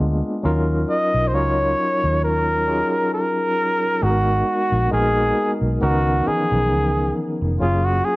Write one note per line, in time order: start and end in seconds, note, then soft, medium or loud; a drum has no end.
0.00 0.21 D2 medium
0.00 0.45 G#3 medium
0.00 0.45 A#3 medium
0.00 0.45 B3 medium
0.00 0.46 D4 medium
0.00 0.45 F4 medium
0.00 0.26 G#4 medium
0.43 0.83 D#2 medium
0.43 1.21 F#3 medium
0.43 1.21 C#4 medium
0.43 1.21 D#4 medium
0.43 1.21 F4 medium
0.43 1.22 A#4 medium
0.90 1.29 D#5 medium
1.14 1.34 B1 medium
1.28 1.36 C5 medium
1.33 1.73 C#2 medium
1.33 2.49 F#3 medium
1.33 2.49 C#4 medium
1.33 2.49 D#4 medium
1.33 2.50 F4 medium
1.33 2.23 C#5 medium
1.33 2.50 C#5 medium
2.04 2.81 D#2 medium
2.24 3.09 A#4 medium
2.67 3.83 F#3 medium
2.67 3.83 C#4 medium
2.67 3.84 D#4 medium
2.67 3.84 F4 medium
2.67 3.84 G#4 medium
3.13 4.05 A#4 medium
4.02 4.41 G#1 medium
4.02 4.79 G#3 medium
4.02 4.79 B3 medium
4.02 4.79 D#4 medium
4.02 4.92 F#4 medium
4.02 4.80 F#4 medium
4.02 4.10 G#4 medium
4.10 4.83 A#4 medium
4.72 4.89 A#1 medium
4.91 5.31 A#1 medium
4.91 5.81 G#3 medium
4.91 4.98 A#3 soft
4.91 5.81 D#4 medium
4.91 5.82 F#4 medium
4.91 5.52 G#4 medium
4.91 5.82 A#4 medium
4.98 5.80 B3 medium
5.61 5.79 B1 medium
5.81 6.21 C#2 medium
5.81 6.20 D#3 medium
5.81 6.20 B3 medium
5.81 6.20 C#4 medium
5.81 6.20 D#4 medium
5.81 6.29 F#4 medium
5.81 6.21 A#4 medium
6.26 6.33 E3 soft
6.26 7.42 B3 medium
6.26 7.42 C#4 medium
6.26 7.42 D#4 medium
6.26 7.16 G#4 medium
6.26 7.43 G#4 medium
6.26 muted fingered electric bass stroke soft
6.33 7.45 F3 medium
6.52 6.72 B1 medium
6.72 7.11 C#2 medium
7.42 7.59 F1 medium
7.60 8.00 F#1 loud
7.60 8.16 F#3 medium
7.60 8.16 A#3 medium
7.60 8.16 C#4 medium
7.60 7.86 F4 medium
7.60 8.16 F4 medium
7.60 8.16 G#4 medium
7.85 8.06 F#4 medium
8.04 8.16 G#4 medium